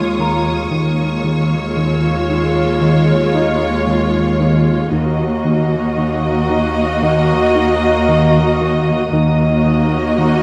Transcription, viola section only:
Already playing: G#3 F4
0.71 G#3 F4
4.91 A#3 F#4
9.11 A#3 F#4

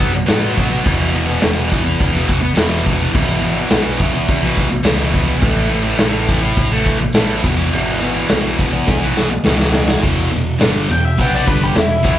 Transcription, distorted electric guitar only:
Already playing: F#3 B3
0.14 muted distorted electric guitar stroke
0.26 B2 F#3 B3
0.55 B2 F#3
0.60 B3
0.69 F#3 B3
0.82 E2 B2
0.87 E3
1.12 E2 B2 E3
1.26 E3
1.31 B2
1.41 E2 B2
1.46 E3
1.68 E2 B2
1.73 E3
1.84 muted distorted electric guitar stroke
2.12 B2 E3
2.41 muted distorted electric guitar stroke
2.54 E2 B2
2.58 E3
2.84 E2 B2 E3
2.97 E3
3.01 B2
3.12 E2 B2 E3
3.40 E2 B2
3.44 E3
3.54 E3
3.59 B2
3.70 E2 B2 E3
3.98 E2 B2
4.02 E3
4.13 muted distorted electric guitar stroke
4.40 E3
4.44 B2
4.70 muted distorted electric guitar stroke
4.83 E2 B2
4.88 E3
5.11 E2 B2
5.16 E3
5.26 B2 E3
5.39 A2 E3
5.44 A3
5.69 A2 E3
5.74 A3
5.84 A3
5.89 E3
5.97 A2 E3
6.02 A3
6.28 A2 E3
6.32 A3
6.43 muted distorted electric guitar stroke
6.72 A3
6.76 E3
7.00 muted distorted electric guitar stroke
7.14 A2 E3 A3
7.42 E2 B2
7.46 E3
7.57 B2 E3
7.72 E2 B2
7.76 E3
8.01 E2 B2
8.05 E3
8.13 E3
8.18 B2
8.28 E2 B2
8.32 E3
8.58 E2 B2
8.62 E3
8.73 muted distorted electric guitar stroke
9.01 B2 E3
9.30 muted distorted electric guitar stroke
9.44 E2 B2
9.48 E3
9.72 E2 B2
9.76 E3
9.87 E3
9.91 B2
10.01 E2 B2 E3
10.32 E2 B2
10.59 G2 D3 G3
10.90 E2 B2
11.18 B2 F#3 B3
11.45 G2 D3 G3
11.75 E2 B2
12.03 E2 B2 E3

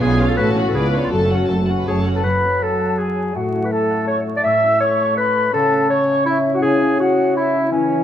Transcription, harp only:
Already playing: G#3 G#4
0.01 B2
0.20 F4 C#5
0.39 A2
0.57 F#4 C#5
0.76 C#3
0.94 F4 D5
1.13 F#2
1.31 A3
1.50 C#5
1.69 A4
1.88 C#5
2.06 F#4
2.25 F#2
2.44 C#4
2.62 C#5
2.80 F#5
2.99 C#5
3.17 F#4
3.35 A2
3.54 C#4
3.72 C#5
3.90 F#5
4.09 C#5
4.27 F#4
4.45 A2
4.63 C#4
4.81 C#5
4.99 A5
5.17 C#5
5.36 A4
5.54 C#3
5.72 C#4
5.91 C#5
6.09 E5
6.45 E4
6.63 C#3
6.82 C#4
7.00 G#4
7.18 E5
7.37 C#5
7.55 E4
7.73 E3
7.92 E4

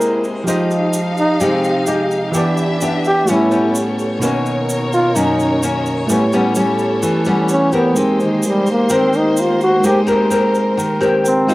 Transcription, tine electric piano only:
Already playing: C3 E4 G#4 A#4 D#5
0.44 F3 G4
0.49 C5 D#5
2.32 E3 G4
2.36 B4 D5
3.25 A3 E4 G4
3.29 B4 C#5
4.19 B2 D#4 F#4
4.24 A#4 C#5
6.07 A3 E4 G4
6.11 B4 C#5
7.93 G#3 D#4 G4
7.98 A#4 C5
9.80 G#3 D#4 G4
9.85 A#4 C5
11.01 A#5
11.24 G5
11.47 G#3 D#4 G4 A#4 C5 F5

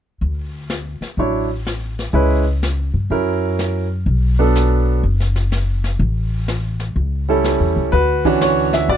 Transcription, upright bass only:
0.21 D2
1.01 muted upright bass stroke
1.17 A1
2.13 C#2
2.94 G2
3.10 F#2
4.06 B1
5.03 F#1
5.99 A1
6.96 C#2
7.60 E2
7.76 C#2
7.93 D2
8.88 A1

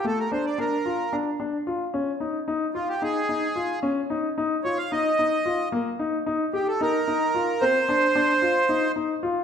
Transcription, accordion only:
0.06 A4
0.19 A#4
0.32 C5
0.46 D5
0.60 A#4
2.74 F4
2.89 G4
3.03 G#4
4.64 C#5
4.78 F5
4.92 D#5
6.54 G4
6.68 A4
6.82 A#4
7.61 C5

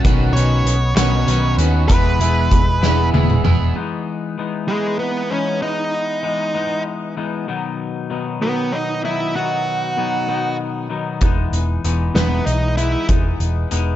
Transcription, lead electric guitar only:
0.33 C#5
0.96 C#5
1.88 B4
4.68 G#3
4.99 B3
5.30 C#4
5.62 D#4
8.42 B3
8.72 D#4
9.05 E4
9.35 F#4
12.15 B3
12.46 D#4
12.77 E4

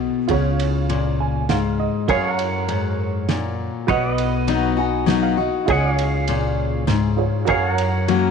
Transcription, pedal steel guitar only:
2.10 G#4 C#5 F5
2.32 A#4 F#5
3.88 B4 C#5 F#5
4.14 D#5
5.70 G#4 D#5 F#5
5.92 C#5 F5
7.49 G#4 C#5 F5
7.70 A#4 F#5

